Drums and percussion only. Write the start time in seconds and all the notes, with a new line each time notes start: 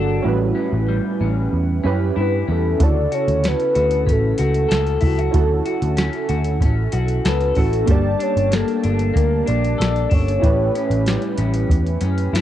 2.80 kick, closed hi-hat
3.12 closed hi-hat
3.28 closed hi-hat
3.44 snare, closed hi-hat
3.60 closed hi-hat
3.75 closed hi-hat
3.91 closed hi-hat
4.07 kick, closed hi-hat
4.38 closed hi-hat
4.54 closed hi-hat
4.71 snare, closed hi-hat
4.87 closed hi-hat
5.01 kick, open hi-hat
5.19 closed hi-hat
5.34 kick, closed hi-hat
5.66 closed hi-hat
5.82 closed hi-hat
5.97 snare, closed hi-hat
6.13 closed hi-hat
6.29 closed hi-hat
6.45 closed hi-hat
6.61 kick, closed hi-hat
6.92 closed hi-hat
7.08 closed hi-hat
7.25 snare, closed hi-hat
7.40 closed hi-hat
7.55 kick, open hi-hat
7.73 closed hi-hat
7.87 kick, closed hi-hat
8.20 closed hi-hat
8.37 closed hi-hat
8.52 snare, closed hi-hat
8.68 closed hi-hat
8.84 closed hi-hat
8.99 closed hi-hat
9.16 kick, closed hi-hat
9.47 closed hi-hat
9.64 closed hi-hat
9.81 snare, closed hi-hat
9.96 closed hi-hat
10.11 kick, open hi-hat
10.28 closed hi-hat
10.43 kick, closed hi-hat
10.75 closed hi-hat
10.91 closed hi-hat
11.06 snare, closed hi-hat
11.22 closed hi-hat
11.38 closed hi-hat
11.54 closed hi-hat
11.70 kick, closed hi-hat
11.87 closed hi-hat
12.01 closed hi-hat
12.18 closed hi-hat
12.35 snare, closed hi-hat